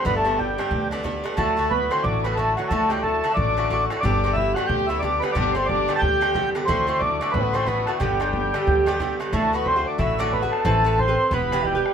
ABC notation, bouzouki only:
X:1
M:4/4
L:1/16
Q:"Swing" 1/4=181
K:G
V:1 name="Bouzouki"
[G,,D,B,D]2 [G,,D,B,D]4 [G,,D,B,D]4 [G,,D,B,D]2 [G,,D,B,D]2 [G,,D,B,D]2 | [A,,D,A,F]2 [A,,D,A,F]4 [A,,D,A,F]4 [A,,D,A,F]2 [A,,D,A,F]2 [A,,D,A,F]2 | [A,,D,A,F]2 [A,,D,A,F]4 [A,,D,A,F]4 [A,,D,A,F]2 [A,,D,A,F]2 [A,,D,A,F]2 | [G,,D,B,G]2 [G,,D,B,G]4 [G,,D,B,G]4 [G,,D,B,G]2 [G,,D,B,G]2 [G,,D,B,G]2 |
[G,,D,B,G]2 [G,,D,B,G]4 [G,,D,B,G]4 [G,,D,B,G]2 [G,,D,B,G]2 [G,,D,B,G]2 | [A,,D,A,F]2 [A,,D,A,F]4 [A,,D,A,F]4 [A,,D,A,F]2 [A,,D,A,F]2 [A,,D,A,F]2 | [G,,D,B,G]2 [G,,D,B,G]4 [G,,D,B,G]4 [G,,D,B,G]2 [G,,D,B,G]2 [G,,D,B,G]2 | [A,,D,A,F]2 [A,,D,A,F]3 [D,A,F]3 [A,,D,A,F]2 [A,,D,A,F]3 [D,A,F]3 |
[E,CAB]2 [E,CAB]3 [CAB]3 [E,B,GB]2 [E,B,GB]3 [B,GB]3 |]